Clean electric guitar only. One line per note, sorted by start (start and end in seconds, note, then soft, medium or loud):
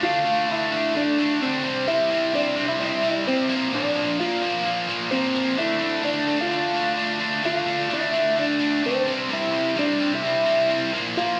0.03 0.46 F4 medium
0.03 0.51 F5 loud
0.51 0.93 E4 medium
0.51 0.93 E5 loud
0.96 1.39 D4 medium
0.96 1.43 D5 medium
1.42 1.85 C4 medium
1.42 1.89 C5 medium
1.88 2.31 E4 medium
1.88 2.35 E5 loud
2.34 2.66 D4 medium
2.34 2.68 D5 loud
2.68 2.74 E4 medium
2.68 2.73 E5 loud
2.80 3.23 E4 medium
2.80 3.23 E5 loud
3.27 3.71 C4 medium
3.27 3.75 C5 medium
3.75 4.17 D4 medium
3.75 4.19 D5 medium
4.19 5.08 F4 medium
4.19 5.15 F5 medium
5.11 5.55 C4 medium
5.11 5.59 C5 medium
5.58 6.02 E4 medium
5.58 6.04 E5 loud
6.05 6.37 D4 medium
6.05 6.37 D5 medium
6.41 7.18 F4 medium
6.41 7.17 F5 medium
7.45 7.88 F4 medium
7.45 7.92 F5 loud
7.93 8.35 E4 medium
7.93 8.39 E5 loud
8.39 8.81 D4 medium
8.39 8.81 D5 medium
8.85 9.28 C4 medium
8.85 9.28 C5 medium
9.33 9.75 E4 medium
9.33 9.79 E5 loud
9.79 10.10 D4 medium
9.79 10.14 D5 medium
10.14 10.90 E4 medium
10.14 10.91 E5 medium
11.17 11.40 F4 loud
11.17 11.40 F5 loud